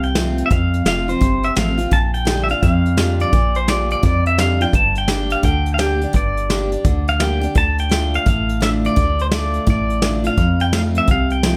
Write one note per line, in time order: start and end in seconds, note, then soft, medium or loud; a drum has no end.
0.00 0.43 C2 medium
0.00 0.48 C3 medium
0.00 0.36 G5 medium
0.00 closed hi-hat soft
0.15 0.49 F3 medium
0.15 0.50 A3 medium
0.15 0.50 C4 medium
0.15 0.51 F4 medium
0.15 snare loud
0.15 closed hi-hat medium
0.38 closed hi-hat medium
0.46 0.51 E5 medium
0.50 0.82 F2 medium
0.50 1.19 F2 medium
0.50 0.84 F5 medium
0.50 kick medium
0.50 closed hi-hat medium
0.74 closed hi-hat medium
0.85 1.16 F1 medium
0.85 1.07 F3 medium
0.85 1.08 A3 medium
0.85 1.08 C4 medium
0.85 1.07 F4 medium
0.85 1.08 F5 medium
0.85 snare loud
0.85 closed hi-hat medium
1.08 1.22 C4 soft
1.08 1.21 F4 soft
1.08 1.45 C5 medium
1.08 closed hi-hat medium
1.21 1.51 G1 medium
1.21 1.89 C3 medium
1.21 kick medium
1.21 closed hi-hat medium
1.43 1.57 E5 medium
1.43 closed hi-hat medium
1.56 1.87 A1 medium
1.56 1.78 F3 medium
1.56 1.78 A3 medium
1.56 1.78 C4 medium
1.56 1.76 F4 medium
1.56 1.93 F5 medium
1.56 snare loud
1.56 closed hi-hat medium
1.78 1.92 C4 soft
1.78 1.91 F4 medium
1.78 closed hi-hat medium
1.91 2.54 A#1 medium
1.91 2.59 A#2 medium
1.91 2.14 A5 medium
1.91 kick medium
1.91 closed hi-hat medium
2.14 2.42 G5 medium
2.14 closed hi-hat medium
2.25 2.48 D3 medium
2.25 2.48 G3 medium
2.25 2.49 D4 medium
2.25 2.47 F4 medium
2.25 snare loud
2.25 closed hi-hat medium
2.44 2.49 E5 medium
2.49 2.62 D4 soft
2.49 2.61 F4 soft
2.49 2.62 F5 medium
2.49 closed hi-hat medium
2.62 3.25 F2 medium
2.62 3.30 F2 medium
2.62 3.22 F5 medium
2.62 kick medium
2.62 closed hi-hat medium
2.86 closed hi-hat soft
2.97 3.31 D3 medium
2.97 3.32 G3 medium
2.97 3.32 D4 medium
2.97 3.32 F4 medium
2.97 snare medium
2.97 closed hi-hat medium
3.20 3.57 D5 medium
3.20 closed hi-hat medium
3.32 3.96 A#1 medium
3.32 4.01 A#2 medium
3.32 kick loud
3.32 closed hi-hat medium
3.55 3.69 C5 medium
3.55 closed hi-hat medium
3.68 4.02 D3 soft
3.68 4.02 G3 medium
3.68 4.03 D4 medium
3.68 4.03 F4 medium
3.68 3.90 D5 medium
3.68 snare medium
3.68 closed hi-hat medium
3.91 4.04 D5 medium
3.91 closed hi-hat medium
4.03 4.71 F2 medium
4.03 4.66 F2 medium
4.03 4.25 D5 medium
4.03 kick medium
4.03 closed hi-hat medium
4.26 4.39 E5 medium
4.26 closed hi-hat medium
4.38 4.60 D3 medium
4.38 4.60 G3 medium
4.38 4.61 D4 medium
4.38 4.60 F4 medium
4.38 4.62 F5 medium
4.38 snare loud
4.38 closed hi-hat medium
4.61 4.74 D4 soft
4.61 4.73 F4 medium
4.61 4.75 G5 medium
4.61 closed hi-hat medium
4.73 5.36 G1 medium
4.73 5.42 G2 medium
4.73 4.98 A5 medium
4.73 kick medium
4.73 closed hi-hat medium
4.95 5.33 G5 medium
4.95 closed hi-hat medium
5.08 5.42 G3 medium
5.08 5.43 A#3 medium
5.08 5.43 D4 medium
5.08 5.44 G4 medium
5.08 snare medium
5.08 closed hi-hat medium
5.30 5.44 F5 medium
5.30 closed hi-hat medium
5.43 6.06 D2 medium
5.43 6.12 D3 medium
5.43 5.74 G5 medium
5.43 kick medium
5.43 closed hi-hat medium
5.66 closed hi-hat medium
5.74 6.00 G3 medium
5.74 5.79 F5 medium
5.79 6.01 A#3 medium
5.79 6.01 D4 medium
5.79 6.00 G4 medium
5.79 6.16 G5 medium
5.79 snare medium
5.79 closed hi-hat medium
6.01 6.15 D4 soft
6.01 6.14 G4 medium
6.01 closed hi-hat medium
6.13 6.77 G1 medium
6.13 6.82 G2 medium
6.13 7.09 D5 medium
6.13 kick medium
6.13 closed hi-hat medium
6.37 closed hi-hat medium
6.50 6.71 G3 medium
6.50 6.71 A#3 medium
6.50 6.72 D4 medium
6.50 6.71 G4 medium
6.50 snare medium
6.50 closed hi-hat medium
6.72 6.85 D4 soft
6.72 6.84 G4 soft
6.72 closed hi-hat medium
6.85 7.48 D2 medium
6.85 7.53 D3 medium
6.85 kick medium
6.85 closed hi-hat medium
7.08 7.21 F5 medium
7.08 closed hi-hat medium
7.20 7.42 G3 medium
7.20 7.42 A#3 medium
7.20 7.42 D4 medium
7.20 7.40 G4 medium
7.20 7.54 G5 medium
7.20 snare loud
7.20 closed hi-hat medium
7.41 7.56 D4 soft
7.41 7.54 G4 medium
7.41 closed hi-hat medium
7.55 8.19 D2 medium
7.55 7.88 D3 medium
7.55 7.79 A5 medium
7.55 kick medium
7.55 closed hi-hat medium
7.78 8.14 G5 medium
7.78 closed hi-hat medium
7.89 8.24 D3 medium
7.89 8.25 A3 medium
7.89 8.25 D4 medium
7.89 8.26 F4 medium
7.89 snare loud
7.89 closed hi-hat medium
8.14 8.27 F5 medium
8.14 closed hi-hat medium
8.26 8.89 A1 medium
8.26 8.94 A2 medium
8.26 8.64 F5 medium
8.26 kick medium
8.26 closed hi-hat medium
8.49 closed hi-hat medium
8.60 8.95 D3 medium
8.60 8.96 A3 medium
8.60 8.96 D4 medium
8.60 8.96 F4 medium
8.60 8.69 E5 medium
8.60 snare loud
8.60 closed hi-hat medium
8.84 9.21 D5 medium
8.84 closed hi-hat medium
8.96 9.60 D2 medium
8.96 9.30 D3 medium
8.96 kick medium
8.96 closed hi-hat medium
9.19 9.27 C5 medium
9.19 closed hi-hat medium
9.31 9.66 D3 medium
9.31 9.66 A3 medium
9.31 9.67 D4 medium
9.31 9.67 F4 medium
9.31 9.69 D5 medium
9.31 snare loud
9.31 closed hi-hat medium
9.54 closed hi-hat medium
9.67 10.30 A1 medium
9.67 10.35 A2 medium
9.67 10.23 D5 medium
9.67 kick loud
9.67 closed hi-hat medium
9.90 closed hi-hat medium
10.02 10.24 D3 medium
10.02 10.25 A3 medium
10.02 10.25 D4 medium
10.02 10.23 F4 medium
10.02 snare loud
10.02 closed hi-hat medium
10.24 10.38 D4 medium
10.24 10.37 F4 medium
10.24 10.62 F5 loud
10.24 closed hi-hat medium
10.37 11.06 F2 medium
10.37 11.01 F2 medium
10.37 kick medium
10.37 closed hi-hat medium
10.60 10.73 G5 medium
10.60 closed hi-hat medium
10.73 11.07 F3 medium
10.73 11.08 A3 medium
10.73 11.08 C4 medium
10.73 11.08 F4 medium
10.73 10.81 F5 medium
10.73 snare loud
10.73 closed hi-hat medium
10.95 11.10 E5 medium
10.95 closed hi-hat medium
11.07 11.57 C2 medium
11.07 11.57 C3 medium
11.07 11.33 F5 medium
11.07 kick medium
11.07 closed hi-hat medium
11.30 11.57 G5 medium
11.30 closed hi-hat medium
11.43 11.57 F3 medium
11.43 11.57 A3 medium
11.43 11.57 C4 medium
11.43 11.57 F4 medium
11.43 snare loud
11.43 closed hi-hat medium